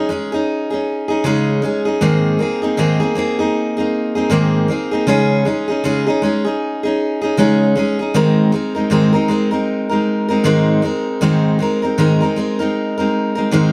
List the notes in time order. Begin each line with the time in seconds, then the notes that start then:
0.09 G#3 C#4 D#4 G#4
0.32 C#4 D#4 G#4
0.70 C#4 D#4 G#4
1.08 C#4 D#4 G#4
1.24 C#3 G#3 C#4 D#4 G#4
1.62 G#3 C#4 D#4 G#4
1.85 C#4 D#4 G#4
2.01 G#2 D#3 A#3 C4 D#4 G#4
2.39 A#3 C4 D#4 G#4
2.62 A#3 C4 D#4 G#4
2.77 G#2 D#3 A#3 C4 D#4 G#4
3.00 A#3 C4 D#4 G#4
3.15 A#3 C4 D#4 G#4
3.39 A#3 C4 D#4 G#4
3.77 A#3 C4 D#4 G#4
4.15 A#3 C4 D#4 G#4
4.30 G#2 D#3 A#3 C4 D#4 G#4
4.68 A#3 C4 D#4 G#4
4.91 A#3 C4 D#4 G#4
5.07 C#3 G#3 C#4 D#4 G#4
5.45 G#3 C#4 D#4 G#4
5.68 C#4 D#4 G#4
5.84 C#3 G#3 C#4 D#4 G#4
6.07 C#4 D#4 G#4
6.22 G#3 C#4 D#4 G#4
6.45 C#4 D#4 G#4
6.83 C#4 D#4 G#4
7.22 C#4 D#4 G#4
7.37 C#3 G#3 C#4 D#4 G#4
7.75 G#3 C#4 D#4 G#4
7.99 C#4 D#4 G#4
8.14 G#2 D#3 G#3 C4 D#4 A#4
8.52 G#3 C4 D#4 A#4
8.75 G#3 C4 D#4 A#4
8.90 G#2 D#3 G#3 C4 D#4 A#4
9.13 G#3 C4 D#4 A#4
9.28 G#3 C4 D#4 A#4
9.51 G#3 C4 D#4 A#4
9.89 G#3 C4 D#4 A#4
10.29 G#3 C4 D#4 A#4
10.44 G#2 D#3 G#3 C4 D#4 A#4
10.82 G#3 C4 D#4 A#4
11.21 G#2 D#3 G#3 C4 D#4 A#4
11.59 G#3 C4 D#4 A#4
11.82 G#3 C4 D#4 A#4
11.98 G#2 D#3 G#3 C4 D#4 A#4
12.21 G#3 C4 D#4 A#4
12.36 G#3 C4 D#4 A#4
12.59 G#3 C4 D#4 A#4
12.98 G#3 C4 D#4 A#4
13.35 G#3 C4 D#4 A#4
13.51 G#2 D#3 G#3 C4 D#4 A#4